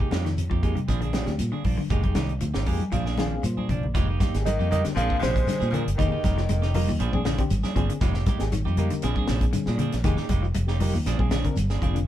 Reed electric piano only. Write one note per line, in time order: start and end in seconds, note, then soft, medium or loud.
0.00 0.10 D#4 medium
0.00 0.11 G4 medium
0.00 0.11 G#4 medium
0.62 0.75 A#3 medium
0.62 0.76 D#4 medium
0.62 0.76 G4 medium
0.62 0.76 G#4 medium
1.01 1.06 D4 medium
1.01 1.07 G#4 medium
1.13 1.38 C4 medium
1.13 1.38 D4 medium
1.13 1.38 G4 loud
1.91 2.15 A#3 medium
1.91 2.15 D#4 medium
1.91 2.15 G4 medium
1.91 2.15 G#4 medium
2.67 2.80 A#3 medium
2.67 2.80 D#4 medium
2.67 2.81 G4 medium
2.67 2.81 G#4 medium
2.67 2.91 G#5 medium
2.93 3.17 F5 medium
3.06 3.10 D4 medium
3.06 3.11 G#4 medium
3.18 3.42 C4 medium
3.18 3.43 D4 medium
3.18 3.43 G#4 loud
3.18 3.43 F5 medium
3.45 3.68 C5 medium
3.71 3.94 D5 medium
4.34 4.45 A#3 medium
4.34 4.45 D#4 medium
4.34 4.46 G4 medium
4.34 4.46 G#4 medium
4.71 4.97 A#3 medium
4.71 4.97 D#4 medium
4.71 4.97 G4 medium
4.71 4.97 A#4 medium
4.96 5.78 C4 medium
4.96 5.79 D4 medium
4.96 5.79 G#4 medium
5.98 6.18 A#3 medium
5.98 6.18 D#4 medium
5.98 6.19 G4 medium
5.98 6.19 G#4 medium
6.62 6.66 G4 medium
6.62 6.67 G#4 loud
6.74 6.87 A#3 medium
6.74 6.87 D#4 medium
6.74 6.87 G4 medium
6.74 6.87 A#4 loud
7.12 7.20 C4 medium
7.12 7.21 D4 medium
7.12 7.21 G#4 loud
7.38 7.50 C4 loud
7.38 7.50 D4 medium
7.38 7.51 G4 loud
7.75 7.96 C4 medium
7.75 7.96 D4 medium
7.75 7.96 G#4 medium
8.39 8.51 A#3 medium
8.39 8.51 D#4 medium
8.39 8.52 G4 medium
8.39 8.52 G#4 medium
8.78 9.03 A#3 medium
8.78 9.03 D#4 medium
8.78 9.04 G4 medium
8.78 9.04 A#4 medium
9.03 9.84 C4 medium
9.03 9.85 D4 medium
9.03 9.85 G#4 loud
10.04 10.24 A#3 medium
10.04 10.24 D#4 medium
10.04 10.25 G4 medium
10.04 10.25 G#4 loud
10.67 10.71 G4 loud
10.67 10.72 G#4 loud
10.80 10.92 A#3 medium
10.80 10.93 D#4 medium
10.80 10.93 G4 medium
10.80 10.93 A#4 medium
11.18 11.26 C4 loud
11.18 11.27 D4 medium
11.18 11.27 G#4 loud
11.44 11.55 C4 medium
11.44 11.56 D4 medium
11.44 11.56 A#4 loud
11.81 12.02 C4 medium
11.81 12.02 D4 medium
11.81 12.02 F4 medium